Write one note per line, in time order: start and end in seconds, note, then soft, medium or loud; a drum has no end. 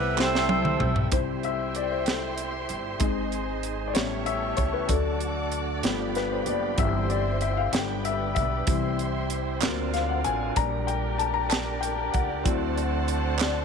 0.00 0.77 C2 loud
0.00 0.14 C3 medium
0.00 0.17 G3 medium
0.00 0.10 A3 medium
0.00 0.19 B3 medium
0.00 0.11 C4 medium
0.00 0.11 E4 medium
0.00 0.14 E4 medium
0.00 0.11 A4 medium
0.00 1.10 A4 medium
0.00 0.19 B4 medium
0.00 1.10 E5 medium
0.00 1.08 G5 medium
0.17 1.04 G3 medium
0.17 1.04 A3 medium
0.17 1.05 C4 medium
0.17 0.89 C4 medium
0.17 1.05 E4 medium
0.17 1.08 E4 medium
0.17 1.06 G4 medium
0.17 1.09 A4 medium
0.17 0.89 C5 loud
0.17 snare medium
0.17 clap medium
0.35 snare medium
0.49 high tom medium
0.65 mid tom medium
0.80 1.10 B1 loud
0.80 mid tom medium
0.96 floor tom medium
1.12 2.65 C2 medium
1.12 2.97 G3 soft
1.12 2.97 C4 soft
1.12 2.97 E4 medium
1.12 2.99 E4 medium
1.12 2.99 G4 medium
1.12 3.93 C5 medium
1.12 1.20 C5 medium
1.12 2.99 E5 medium
1.12 2.99 G5 medium
1.12 3.93 C6 medium
1.12 kick medium
1.12 closed hi-hat medium
1.43 1.73 E5 medium
1.43 closed hi-hat soft
1.75 1.81 D5 medium
1.75 closed hi-hat medium
1.92 2.08 C5 medium
2.06 2.66 A4 medium
2.06 snare medium
2.06 closed hi-hat medium
2.38 closed hi-hat soft
2.69 2.99 G1 medium
2.69 closed hi-hat soft
2.99 3.91 G#1 medium
2.99 3.90 G#3 medium
2.99 3.91 C4 soft
2.99 3.94 D#4 medium
2.99 3.91 D#4 medium
2.99 3.94 G#4 soft
2.99 3.95 D#5 medium
2.99 3.94 G#5 medium
2.99 kick loud
2.99 closed hi-hat medium
3.32 closed hi-hat soft
3.63 closed hi-hat medium
3.88 3.95 D5 medium
3.93 4.54 A1 medium
3.93 4.37 G3 soft
3.93 4.88 A3 medium
3.93 4.37 B3 soft
3.93 4.88 C#4 medium
3.93 4.37 C#4 soft
3.93 4.88 E4 medium
3.93 4.88 G4 medium
3.93 4.88 C#5 medium
3.93 4.28 C#5 medium
3.93 4.90 E5 medium
3.93 4.89 G5 medium
3.93 5.83 A5 medium
3.93 4.90 C#6 medium
3.93 snare medium
3.93 closed hi-hat medium
4.26 4.59 E5 medium
4.26 closed hi-hat soft
4.57 4.87 C#2 medium
4.57 4.74 C#5 medium
4.57 kick medium
4.57 closed hi-hat soft
4.73 4.88 B4 medium
4.88 5.80 D2 medium
4.88 5.31 F#3 medium
4.88 5.31 A3 soft
4.88 5.84 A3 medium
4.88 5.31 D4 medium
4.88 6.77 D4 medium
4.88 5.83 F#4 medium
4.88 5.49 A4 medium
4.88 6.77 D5 medium
4.88 5.83 F#5 medium
4.88 5.84 D6 medium
4.88 kick medium
4.88 closed hi-hat medium
5.20 closed hi-hat soft
5.52 closed hi-hat medium
5.83 6.43 G1 loud
5.83 6.74 F3 soft
5.83 6.78 F3 medium
5.83 6.78 G3 medium
5.83 6.75 A3 soft
5.83 6.78 B3 medium
5.83 6.75 B3 soft
5.83 8.65 G4 medium
5.83 6.78 F5 medium
5.83 9.59 G5 medium
5.83 6.78 B5 medium
5.83 snare medium
5.83 closed hi-hat medium
6.15 6.31 B4 medium
6.15 snare soft
6.15 closed hi-hat soft
6.32 6.37 C5 medium
6.46 6.76 F#1 medium
6.46 6.77 D5 medium
6.46 closed hi-hat medium
6.77 7.69 G1 loud
6.77 7.69 E3 medium
6.77 7.69 G3 soft
6.77 7.72 C4 medium
6.77 7.69 C4 medium
6.77 7.72 E4 medium
6.77 7.72 C5 medium
6.77 7.72 E5 medium
6.77 7.11 E5 medium
6.77 7.72 C6 medium
6.77 kick loud
6.77 closed hi-hat medium
7.10 7.43 D5 medium
7.10 closed hi-hat soft
7.41 7.52 E5 medium
7.41 closed hi-hat medium
7.53 7.58 E5 medium
7.53 7.74 F5 medium
7.71 8.32 G1 medium
7.71 8.64 D3 soft
7.71 8.64 G3 soft
7.71 8.66 B3 medium
7.71 8.64 B3 soft
7.71 8.66 D4 medium
7.71 8.66 B4 medium
7.71 8.66 D5 medium
7.71 8.06 G5 medium
7.71 8.66 B5 medium
7.71 snare medium
7.71 closed hi-hat medium
8.05 8.33 E5 medium
8.05 closed hi-hat medium
8.35 8.66 B1 medium
8.35 8.95 E5 medium
8.35 kick medium
8.35 closed hi-hat soft
8.67 9.58 C2 medium
8.67 9.09 E3 medium
8.67 9.09 G3 soft
8.67 10.55 C4 medium
8.67 9.10 C4 medium
8.67 9.61 E4 medium
8.67 9.61 G4 medium
8.67 10.55 C5 medium
8.67 9.61 E5 medium
8.67 9.62 C6 medium
8.67 kick loud
8.67 closed hi-hat medium
8.99 closed hi-hat soft
9.30 closed hi-hat medium
9.61 10.22 D2 medium
9.61 10.52 F#3 soft
9.61 10.55 F#3 medium
9.61 10.53 A#3 soft
9.61 10.53 C4 soft
9.61 13.65 D4 medium
9.61 10.55 F4 medium
9.61 10.55 A#4 medium
9.61 10.55 D5 medium
9.61 10.56 F5 medium
9.61 snare medium
9.61 clap medium
9.61 closed hi-hat medium
9.93 10.10 F5 medium
9.93 snare soft
9.93 closed hi-hat medium
10.09 10.14 F#5 medium
10.24 10.55 A1 medium
10.24 10.58 G#5 medium
10.24 closed hi-hat soft
10.56 12.10 A#1 loud
10.56 10.99 G3 medium
10.56 11.00 A#3 soft
10.56 11.00 D4 medium
10.56 12.43 G4 medium
10.56 12.44 G4 medium
10.56 12.43 A#4 medium
10.56 12.44 A#4 medium
10.56 13.65 D5 medium
10.56 10.86 A#5 loud
10.56 kick loud
10.56 closed hi-hat medium
10.87 11.20 G5 medium
10.87 closed hi-hat soft
11.18 11.34 A5 medium
11.18 closed hi-hat medium
11.34 11.51 A#5 loud
11.49 11.79 A5 medium
11.49 snare medium
11.49 clap medium
11.49 closed hi-hat medium
11.81 11.88 G5 medium
11.81 closed hi-hat medium
12.12 12.44 C#2 medium
12.12 12.72 F#5 medium
12.12 kick medium
12.12 closed hi-hat soft
12.44 13.65 D2 loud
12.44 13.65 F#3 medium
12.44 13.65 A3 medium
12.44 13.65 C4 medium
12.44 13.65 E4 medium
12.44 13.65 F#4 medium
12.44 13.65 C5 medium
12.44 13.65 F#5 medium
12.44 13.65 A5 medium
12.44 kick loud
12.44 closed hi-hat medium
12.78 closed hi-hat soft
13.08 closed hi-hat medium
13.39 13.65 D5 medium
13.39 snare loud
13.39 clap medium
13.39 closed hi-hat medium